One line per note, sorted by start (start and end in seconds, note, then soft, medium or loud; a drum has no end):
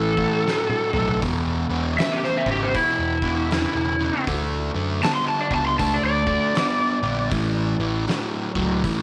0.00 0.26 A1 medium
0.00 0.13 A2 medium
0.00 0.13 E3 medium
0.00 1.19 A4 medium
0.17 0.44 A2 medium
0.17 0.43 E3 medium
0.17 kick medium
0.47 0.89 A2 medium
0.47 0.90 F#3 medium
0.47 snare medium
0.70 high tom medium
0.93 1.19 B1 medium
0.93 1.20 A2 medium
0.93 1.20 F#3 medium
0.93 mid tom medium
1.08 floor tom medium
1.22 1.63 E1 medium
1.22 1.65 E2 medium
1.22 1.66 B2 medium
1.22 kick loud
1.22 open hi-hat soft
1.69 1.95 E1 medium
1.69 1.96 E2 medium
1.69 1.96 B2 medium
1.98 2.41 E2 medium
1.98 2.42 C#3 medium
1.98 2.14 E5 medium
1.98 snare medium
1.98 open hi-hat soft
2.12 2.22 G4 medium
2.24 2.46 C5 medium
2.24 snare soft
2.37 2.45 E5 medium
2.46 2.71 G#1 medium
2.46 2.72 E2 medium
2.46 2.73 C#3 medium
2.46 kick medium
2.51 2.66 G4 medium
2.63 2.73 C5 medium
2.74 3.18 E2 medium
2.74 3.18 B2 medium
2.74 4.23 E4 loud
2.74 kick medium
2.74 open hi-hat medium
2.99 3.64 E1 medium
3.22 3.48 E2 medium
3.22 3.49 B2 medium
3.22 kick medium
3.51 3.94 E2 medium
3.51 3.94 C#3 medium
3.51 snare loud
3.51 open hi-hat soft
3.75 4.08 E1 medium
3.99 4.25 E2 medium
3.99 4.25 C#3 medium
4.27 4.68 D2 medium
4.27 4.70 D3 medium
4.27 4.71 A3 medium
4.27 kick medium
4.27 open hi-hat soft
4.75 5.00 F#2 medium
4.75 5.01 D3 medium
4.75 5.01 A3 medium
5.02 5.46 D3 medium
5.02 5.46 B3 medium
5.02 5.15 A5 medium
5.02 snare loud
5.02 open hi-hat medium
5.15 5.26 C6 medium
5.28 5.50 A5 medium
5.41 5.49 D5 medium
5.51 5.96 C#2 medium
5.51 5.77 D3 medium
5.51 5.77 B3 medium
5.51 5.67 A5 medium
5.51 kick medium
5.67 5.78 C6 medium
5.79 6.22 D3 medium
5.79 6.23 A3 medium
5.79 5.95 A5 medium
5.79 kick loud
5.79 open hi-hat medium
5.94 6.04 D5 medium
6.03 6.36 D2 medium
6.03 7.29 D5 loud
6.26 6.53 D3 medium
6.26 6.53 A3 medium
6.26 kick medium
6.55 6.98 D3 medium
6.55 6.98 B3 loud
6.55 snare loud
6.55 open hi-hat medium
7.03 7.28 A#1 medium
7.03 7.29 D3 medium
7.03 7.29 B3 medium
7.31 7.73 A1 loud
7.31 7.75 A2 medium
7.31 7.75 E3 medium
7.31 kick loud
7.31 open hi-hat soft
7.79 8.04 A1 medium
7.79 8.05 A2 medium
7.79 8.06 E3 medium
8.07 8.50 A2 medium
8.07 8.51 F#3 medium
8.07 snare medium
8.07 open hi-hat soft
8.55 8.80 C#2 medium
8.55 8.81 A2 medium
8.55 8.82 F#3 medium
8.55 kick medium
8.84 9.02 A2 medium
8.84 9.02 E3 loud
8.84 kick medium
8.84 open hi-hat medium